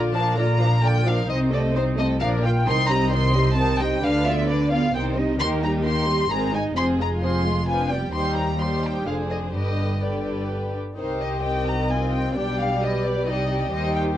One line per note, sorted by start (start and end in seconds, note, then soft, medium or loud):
0.00 1.25 A#1 medium
0.00 1.25 A#2 medium
0.00 0.12 D3 medium
0.00 0.12 F4 medium
0.00 0.13 D5 medium
0.14 0.37 F3 soft
0.14 0.38 D4 medium
0.14 0.37 A#4 soft
0.14 0.37 F5 soft
0.14 0.37 A5 medium
0.37 0.60 D3 medium
0.37 0.60 F4 soft
0.37 0.60 D5 medium
0.37 0.83 A#5 medium
0.59 0.83 F3 soft
0.59 0.83 D4 soft
0.59 0.83 A#4 soft
0.59 0.83 F5 soft
0.83 1.05 D3 soft
0.83 1.04 F4 medium
0.83 1.04 D5 soft
0.83 1.06 G5 medium
1.06 1.29 F3 medium
1.06 1.29 D4 medium
1.06 1.29 A#4 soft
1.06 1.29 F5 medium
1.29 2.19 C2 medium
1.29 2.19 C3 medium
1.29 1.50 C4 medium
1.29 1.50 D#4 medium
1.29 1.51 C5 medium
1.29 1.37 D#5 medium
1.51 1.75 A3 medium
1.51 1.74 C4 soft
1.51 1.75 A4 soft
1.51 1.61 D5 medium
1.51 1.75 D#5 medium
1.75 1.97 C4 medium
1.75 1.98 D#4 medium
1.75 1.98 C5 medium
1.75 1.84 C5 medium
1.97 2.21 A3 medium
1.97 2.21 C4 medium
1.97 2.21 A4 medium
1.97 2.20 D#5 soft
1.97 2.06 D#5 medium
2.21 2.67 A#1 medium
2.21 2.67 A#2 medium
2.21 2.43 F3 medium
2.21 2.43 D4 medium
2.21 2.42 A#4 soft
2.21 2.42 D5 medium
2.21 2.29 F5 medium
2.43 2.67 A#3 soft
2.43 2.66 F4 soft
2.43 2.67 F4 soft
2.43 2.67 F5 medium
2.43 2.66 G5 medium
2.66 4.03 C2 medium
2.66 4.03 C3 medium
2.66 2.88 D#3 medium
2.66 2.88 C4 medium
2.66 2.88 D#4 medium
2.66 2.88 C5 medium
2.66 2.90 C6 loud
2.89 3.13 G3 medium
2.89 3.13 C4 medium
2.89 3.12 D#4 medium
2.89 3.12 D#5 medium
2.89 3.12 A#5 medium
3.12 3.36 D#3 medium
3.12 3.35 C4 medium
3.12 3.36 D#4 medium
3.12 3.35 C5 medium
3.12 3.57 C6 medium
3.34 3.58 G3 medium
3.34 3.58 C4 medium
3.34 3.57 D#4 medium
3.34 3.57 D#5 soft
3.57 3.79 D#3 medium
3.57 3.78 C4 soft
3.57 3.79 D#4 medium
3.57 3.79 C5 medium
3.57 3.80 A5 medium
3.79 4.03 G3 medium
3.79 4.04 C4 medium
3.79 4.02 D#4 medium
3.79 4.03 D#5 medium
3.79 4.03 G5 medium
4.02 4.93 D2 medium
4.02 4.92 D3 medium
4.02 4.24 D4 medium
4.02 4.25 D4 medium
4.02 4.24 B4 medium
4.02 4.26 F5 loud
4.26 4.49 B3 medium
4.26 4.48 F4 medium
4.26 4.48 D5 medium
4.26 4.49 E5 medium
4.48 4.71 D4 medium
4.48 4.71 B4 medium
4.48 4.71 D5 medium
4.71 4.94 B3 medium
4.71 4.94 F4 medium
4.71 4.94 D5 medium
4.71 4.94 F5 medium
4.94 5.39 C2 medium
4.94 5.39 C3 medium
4.94 5.15 D#3 medium
4.94 5.15 C4 medium
4.94 5.15 D#4 medium
4.94 5.15 C5 medium
4.94 5.03 G5 medium
5.16 5.39 G3 soft
5.16 5.39 C4 medium
5.16 5.40 D#4 medium
5.16 5.40 D#5 soft
5.40 6.31 D#2 medium
5.40 6.31 D#3 medium
5.40 5.61 A#3 medium
5.40 5.61 D#4 medium
5.40 5.61 G4 medium
5.40 5.61 A#4 medium
5.40 5.48 C6 loud
5.63 5.86 G3 medium
5.63 5.85 D#4 medium
5.63 5.84 G4 soft
5.63 5.85 G4 medium
5.63 5.72 A#5 medium
5.85 6.08 A#3 medium
5.85 6.08 D#4 medium
5.85 6.07 G4 medium
5.85 6.08 A#4 soft
5.85 6.30 C6 medium
6.08 6.30 G3 medium
6.08 6.31 D#4 soft
6.08 6.30 G4 soft
6.08 6.31 G4 soft
6.30 6.76 G#1 medium
6.30 6.76 G#2 medium
6.30 6.51 D#3 medium
6.30 6.52 C4 soft
6.30 6.52 G#4 soft
6.30 6.52 C5 soft
6.30 6.53 A#5 medium
6.52 6.76 G#3 soft
6.52 6.76 D#4 soft
6.52 6.76 D#5 soft
6.52 6.62 G#5 medium
6.76 8.11 F1 medium
6.76 8.11 F2 medium
6.76 6.98 F3 medium
6.76 6.98 C4 medium
6.76 6.98 G#4 soft
6.76 6.98 C5 soft
6.76 6.85 C6 medium
6.99 7.22 G#3 soft
6.99 7.22 F4 soft
6.99 7.22 G#4 soft
6.99 7.08 A#5 medium
7.22 7.45 F3 soft
7.22 7.45 C4 soft
7.22 7.44 G#4 soft
7.22 7.45 C5 soft
7.22 7.67 C6 medium
7.45 7.68 G#3 soft
7.45 7.67 F4 soft
7.45 7.68 G#4 soft
7.68 7.90 F3 soft
7.68 7.90 D4 soft
7.68 7.89 F4 soft
7.68 7.89 B4 soft
7.68 7.91 G#5 medium
7.91 8.13 G3 soft
7.91 8.14 B3 soft
7.91 8.13 G4 soft
7.91 8.14 D5 soft
7.91 8.14 G5 medium
8.13 9.03 D#2 medium
8.13 9.03 D#2 soft
8.13 8.57 G3 soft
8.13 8.56 D#4 medium
8.13 8.57 G4 soft
8.13 8.57 C5 soft
8.13 8.36 C6 medium
8.37 8.59 A#5 medium
8.59 9.05 G3 soft
8.59 9.05 D#4 soft
8.59 9.05 G4 soft
8.59 9.05 C5 soft
8.59 8.83 C6 medium
8.84 9.07 G5 medium
9.05 9.54 F1 soft
9.05 9.53 F2 soft
9.05 9.53 D3 soft
9.05 9.53 D4 soft
9.05 9.54 G#4 soft
9.05 9.53 C5 soft
9.05 9.14 F5 medium
9.30 9.38 D#5 soft
9.54 10.77 G1 soft
9.54 10.77 G2 soft
9.54 10.01 D3 soft
9.54 10.01 D4 soft
9.54 10.01 G4 soft
9.54 10.01 B4 soft
9.54 10.01 D#5 medium
10.02 10.75 D3 soft
10.02 10.75 D4 soft
10.02 10.75 G4 soft
10.02 10.75 B4 soft
10.02 10.74 D5 soft
10.96 12.32 C2 soft
10.96 12.31 C3 soft
10.96 11.40 D#3 soft
10.96 11.40 D#4 soft
10.96 11.86 G4 soft
10.96 11.40 C5 soft
10.96 11.19 C5 medium
11.20 11.43 D#5 medium
11.43 12.33 D#3 soft
11.43 11.88 C4 soft
11.43 12.35 D#5 soft
11.43 11.66 G5 medium
11.67 11.90 A#5 medium
11.89 12.34 C4 soft
11.89 12.36 F4 soft
11.89 12.13 G#5 medium
12.14 12.35 G5 medium
12.35 13.27 B1 soft
12.35 13.27 B2 soft
12.35 13.24 G3 soft
12.35 12.81 D4 soft
12.35 12.81 G4 soft
12.35 13.70 D5 soft
12.35 12.58 G5 medium
12.60 12.82 F5 medium
12.80 13.26 G4 soft
12.80 13.27 B4 soft
12.80 13.05 D#5 medium
13.04 13.27 D5 medium
13.25 13.73 C2 soft
13.25 13.72 C3 medium
13.25 13.70 G3 soft
13.25 13.70 D#4 soft
13.25 13.48 G4 soft
13.25 13.71 D#5 medium
13.50 14.17 G4 medium
13.71 14.17 D#2 medium
13.71 14.17 D#3 medium
13.71 14.16 G3 soft
13.71 14.16 D#4 soft
13.71 14.17 C5 soft
13.71 13.95 D#5 medium
13.95 14.03 G5 medium